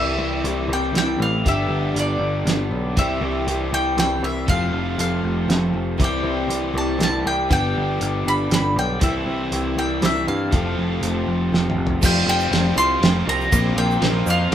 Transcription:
Already playing: C2 C3 E3 G3 C4 E4 G4 E5
0.19 C2
0.44 C2 G3 C4 E4 G4, closed hi-hat
0.68 C2 E4 G4
0.73 C4 G5
0.93 C2 G3 C4 E4, snare, closed hi-hat
0.98 G4 G5
1.19 A1 F5
1.46 G1 G2 D3 G3 B3 D4 G4 E5, kick, closed hi-hat
1.69 G1
1.94 G1 G3 B3 D4 G4, closed hi-hat
1.99 D5
2.19 G1
2.45 G1 G3 B3 D4, snare, closed hi-hat
2.50 G4
2.71 B1
2.97 C2 C3 E3 G3 C4 E4 G4 E5, kick, closed hi-hat
3.21 C2
3.47 C2 G3 C4 E4 G4, closed hi-hat
3.73 C2 G5
3.96 C2 G3 C4 E4 G4 G5, snare, closed hi-hat
4.23 C2 E5
4.47 F1 F2 C3 F3 A3 C4 F4 A4 F5, kick, closed hi-hat
4.73 F1
4.97 F1 F3 C4 F4 A4 F5, closed hi-hat
5.23 F1
5.48 F1 F3 C4 F4 A4, snare, closed hi-hat
5.74 F1
5.97 C2 C3 E3 G3 C4 E4 G4, kick, closed hi-hat
6.04 G5
6.23 C2
6.48 C2 G3 C4 E4 G4, closed hi-hat
6.74 C2 C4 E4 G4
6.78 A5
6.97 C2 G3 C4 E4 G4, snare, closed hi-hat
7.03 A5
7.25 C2 G5
7.49 G1 G2 D3 G3 B3 D4 G4 G5, kick, closed hi-hat
7.77 G1
7.99 G1 G3 B3 D4 G4, closed hi-hat
8.25 G1 G3 B3 D4 G4 B5
8.50 G1 G3 B3 D4 G4, snare, closed hi-hat
8.54 B5
8.76 B1 G5
9.00 C2 C3 E3 G3 C4 E4 G4 E5, kick, closed hi-hat
9.26 C2
9.51 C2 G3 C4 E4 G4, closed hi-hat
9.77 C2 G5
10.01 C2 G3 C4 E4 G4, snare, closed hi-hat
10.05 E5
10.28 G2 F5
10.51 F1 F2 C3 F3 A3 C4 F4 A4, kick, closed hi-hat
10.77 F1
11.02 F1 F3 C4 F4 A4, closed hi-hat
11.27 F1
11.52 F1 F3 C4 F4 A4, snare
11.70 mid tom
11.77 F1
11.87 floor tom
12.01 F1 F3 G3 C4 F4 G4 C5 G5, kick, crash, shaker
12.26 F1 G3 C4 F4 G5
12.40 shaker
12.51 F1 F3 G3 C4 F4 G4, snare, ride
12.76 C2 G3 C4 F4 C6, shaker
13.01 F1 F3 G3 C4 F4 G4, snare, ride, shaker
13.25 C2 F3 G3 C4 F4 A#5
13.41 shaker
13.51 A#1 A#2 F3 A#3 C4 F4 A#4 C5, kick, ride, shaker
13.76 A#1 A#3 C4 F4 G5
13.91 shaker
14.01 A#1 A#2 F3 A#3 C4 F4 A#4, snare, ride
14.26 F2 A#3 C4 F4, shaker
14.30 F5
14.51 F3 A#3

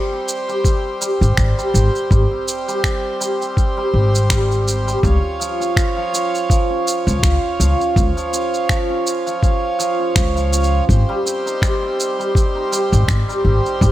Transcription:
Already playing: G3 C4 G4 C5
0.12 C4
0.28 shaker
0.48 G3, shaker
0.64 C4, kick, shaker
1.01 G3, shaker
1.21 G#1 C4, shaker
1.37 G#1, finger snap, kick, shaker
1.58 G3, shaker
1.74 G#1 C4, shaker
1.95 shaker
2.10 G#1 G3, kick, shaker
2.31 C4
2.48 shaker
2.68 G3, shaker
2.84 C4, finger snap, kick, shaker
3.20 G3, shaker
3.41 C4, shaker
3.57 kick, shaker
3.77 G3
3.93 G#1 C4
4.15 shaker
4.30 G3, finger snap, kick, shaker
4.51 C4, shaker
4.68 shaker
4.87 G3, shaker
5.03 C#2 C#4 F4 C#5, kick, shaker
5.40 F3, shaker
5.60 C#4, shaker
5.77 finger snap, kick, shaker
5.97 F3
6.13 C#4, shaker
6.35 shaker
6.50 F3, kick, shaker
6.70 C#4
6.87 shaker
7.07 C#2 F3, shaker
7.23 C#2 C#4, finger snap, kick, shaker
7.60 C#2 F3, shaker
7.80 C#4, shaker
7.96 C#2, kick, shaker
8.17 F3, shaker
8.33 C#4, shaker
8.54 shaker
8.69 F3, finger snap, kick, shaker
8.90 C#4
9.07 shaker
9.26 F3, shaker
9.43 C#4, kick, shaker
9.79 F3, shaker
9.99 C#4
10.16 C#2, finger snap, kick, shaker
10.36 F3, shaker
10.52 C#4, shaker
10.64 shaker
10.89 G#1 G4 C5, kick, shaker
11.09 G3
11.25 C4, shaker
11.46 D#4, shaker
11.62 G3, finger snap, kick, shaker
11.83 C4
12.00 shaker
12.19 G3, shaker
12.35 C4, kick, shaker
12.55 D#4
12.72 G3, shaker
12.92 G#1 C4, shaker
13.08 G#1, finger snap, kick, shaker
13.28 G3, shaker
13.45 G#1 C4
13.66 D#4, shaker
13.81 G#1 G3, kick, shaker

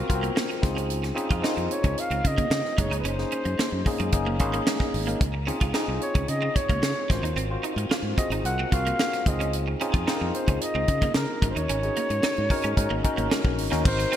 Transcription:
Already playing: C4 F4 F#4 A#4
0.09 C2 B3 F4 F#4 A#4, muted clean electric guitar stroke, kick, closed hi-hat
0.15 C4
0.23 A#3, closed hi-hat
0.36 A#3, snare
0.49 muted clean electric guitar stroke, closed hi-hat
0.62 C#2 C4 D#4 F4 G#4, kick, snare, closed hi-hat
0.77 C#4, closed hi-hat
0.90 closed hi-hat
1.03 muted clean electric guitar stroke, snare, closed hi-hat
1.15 C4 C#4 D#4 F4 G#4, closed hi-hat
1.31 F2 F4, kick, closed hi-hat
1.42 C4 D#4 F4 A#4, snare
1.57 F2, muted clean electric guitar stroke, closed hi-hat
1.71 C#5, closed hi-hat
1.84 C#2 C#4, kick, closed hi-hat
1.98 F5, closed hi-hat
2.10 C#2 C4, closed hi-hat
2.24 C#3 D#5, muted clean electric guitar stroke, kick, closed hi-hat
2.38 A#3, kick, closed hi-hat
2.50 C#3, muted clean electric guitar stroke, snare
2.65 snare
2.78 F#1 G#3 A#3 C#4 D#4 G#4 C#5, kick, closed hi-hat
2.90 C#2 D#4, closed hi-hat
2.99 B4
3.04 F#1 C#4, closed hi-hat
3.08 C5
3.18 A#3 C#4 D#4 G#4, snare
3.31 C#4, closed hi-hat
3.45 F#2, muted clean electric guitar stroke, closed hi-hat
3.59 A#3, muted fingered electric bass stroke, snare
3.72 F#2
3.86 A#3 C#4 D#4 G#4, muted clean electric guitar stroke, kick, open hi-hat
3.99 F#2 G#3, closed hi-hat
4.12 F#1 A#3 C#4 D#4 G#4, kick, closed hi-hat
4.26 A#3
4.39 G#1 A#3 C#4 D#4 G#4, muted clean electric guitar stroke, kick, closed hi-hat
4.53 A#3, closed hi-hat
4.67 G#3, snare
4.80 muted clean electric guitar stroke, kick, snare
4.94 G#1, open hi-hat
5.07 A#3 C#4 D#4 A#4, closed hi-hat
5.21 C#2, kick, closed hi-hat
5.34 muted clean electric guitar stroke
5.47 C4 C#4 D#4 F4 G#4, closed hi-hat
5.61 C#2 F4, kick, closed hi-hat
5.74 C4 D#4 F4 G#4, snare
5.88 C2, muted clean electric guitar stroke
6.01 C#5, closed hi-hat
6.15 C#2 C#4, kick, closed hi-hat
6.28 C#3 D#5, closed hi-hat
6.42 C4
6.56 C#5, muted clean electric guitar stroke, kick, closed hi-hat
6.69 C#2 A#3, kick, closed hi-hat
6.82 C#3, muted clean electric guitar stroke, snare
7.10 G#1 G#3 C4 F4 F#4 A#4 C5, kick, snare, closed hi-hat
7.22 D#2 D#4, closed hi-hat
7.36 G#1 C4, closed hi-hat
7.50 C4 F4 F#4 C5
7.63 D#4, closed hi-hat
7.76 G#2, muted clean electric guitar stroke, closed hi-hat
7.90 F4, muted fingered electric bass stroke, snare
8.03 G#2
8.18 C4 F4 F#4 G#4 D#5, muted clean electric guitar stroke, kick, closed hi-hat
8.30 G#1 D#4, closed hi-hat
8.44 C2 C4 F4 F#4 A#4 F#5, closed hi-hat
8.59 C4
8.72 C2 C4 F4 F#4 A#4 F5, muted clean electric guitar stroke, kick, closed hi-hat
8.86 A#3, closed hi-hat
8.99 A#3, snare
9.13 muted clean electric guitar stroke, snare, closed hi-hat
9.26 C#2 C4 D#4 F4 G#4 D#5, kick, closed hi-hat
9.40 C#4, closed hi-hat
9.53 closed hi-hat
9.68 muted clean electric guitar stroke
9.81 C4 C#4 D#4 F4 G#4, closed hi-hat
9.94 F2 F4, kick, closed hi-hat
10.07 C4 D#4 F4 G#4, snare
10.15 A#4
10.21 F2, muted clean electric guitar stroke
10.34 C5, closed hi-hat
10.48 C#2 C#4, kick, closed hi-hat
10.61 D#5, closed hi-hat
10.75 C#2 C4
10.88 C#3, muted clean electric guitar stroke, kick, closed hi-hat
11.02 A#3, kick, closed hi-hat
11.14 C#3 A#4, muted clean electric guitar stroke, snare
11.42 G#1 G#3 C#4 D#4 F#4 A#4, kick, closed hi-hat
11.50 C5
11.55 D#2 D#4 C#5, closed hi-hat
11.69 G#1 C#4, closed hi-hat
11.83 C#4 D#4 F#4 G#4, closed hi-hat
11.96 A#3, closed hi-hat
12.10 G#2, muted clean electric guitar stroke, closed hi-hat
12.23 D#4, muted fingered electric bass stroke, snare
12.36 G#2, closed hi-hat
12.50 C#4 D#4 F#4 A#4, muted clean electric guitar stroke, kick, open hi-hat
12.64 G#2 C#4, closed hi-hat
12.76 G#2 C#4 D#4 F#4 A#4, kick, closed hi-hat
12.90 G#1 A#3
13.04 C#4 D#4 F#4 A#4, muted clean electric guitar stroke, kick, closed hi-hat
13.17 G#1 A#3, closed hi-hat
13.31 G#3, snare
13.44 A#1, muted clean electric guitar stroke, kick
13.58 G#1, open hi-hat
13.71 D#2 A#3 C#4 D#4 F#4 A#4, snare, closed hi-hat
13.84 G#1 C4 D#4 F#4 A#4 C5, kick, crash
13.99 muted clean electric guitar stroke, closed hi-hat
14.12 C4 D#4 F#4, closed hi-hat

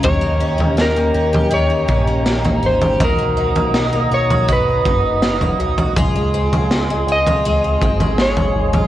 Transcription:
Already playing: G#3 C#4
0.03 D#2 D#3 G4 C#5 D#5 A#5, kick, floor tom
0.21 A#3
0.40 C#4
0.58 D#2 A#3, floor tom
0.77 C#4, snare
0.81 A#4
0.96 A#3
1.14 D#2 C#4
1.33 G4, floor tom
1.50 D#3 G4 C#5
1.70 A#3
1.88 A#1 C#4, kick
2.07 A#3
2.26 C#4, snare
2.44 A#3, floor tom
2.63 G#1 C#4 C5
2.81 G4, floor tom
3.00 B1 D#3 F#4 D#5 F#5 D#6, kick, floor tom
3.04 A#4
3.19 A#3
3.37 D#4
3.55 B1 A#3, floor tom
3.74 D#4, snare
3.93 A#3
4.11 B1 D#4 C#5
4.30 F#4, floor tom
4.48 D#3 F#4, kick
4.53 B4
4.85 F#1 D#4, kick
5.22 D#4, snare
5.41 A#3, floor tom
5.60 B1 D#4
5.78 F#4, floor tom
5.97 C#2 G#3 F4 G#4 F5 G#5 C6, kick, floor tom
6.16 G#3
6.34 C4
6.52 C#2 G#3, floor tom
6.71 C4, snare
6.90 G#3
7.07 C#2 C4
7.12 D#5
7.26 F4, floor tom
7.45 G#3 F4
7.64 G#3
7.81 G#1 C4, kick
8.00 G#3, floor tom
8.18 C#5, snare
8.37 G#3, floor tom
8.56 G#1
8.73 F4, floor tom

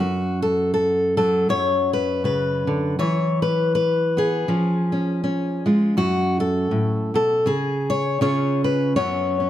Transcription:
Already playing: F#3
0.00 F#2 F#4
0.42 A4
0.74 A4
1.17 F#3 A4
1.49 F#2 C#5
1.93 B4
2.24 C#3 B4
2.67 D3
2.99 E3 C#5
3.42 B4
3.75 B4
4.17 B3 G#4
4.48 F3 C#4
4.92 C#4
5.24 C#4
5.66 G#3 F4
5.97 F#2 F#4
6.40 A4
6.71 A2
7.14 B2 A4
7.46 C#3 G#4
7.90 C#5
8.21 C#3 C#4 F4 G#4 C#5
8.64 B4
8.96 F#2 F#3 B3 C#4 C#5
9.40 C#4

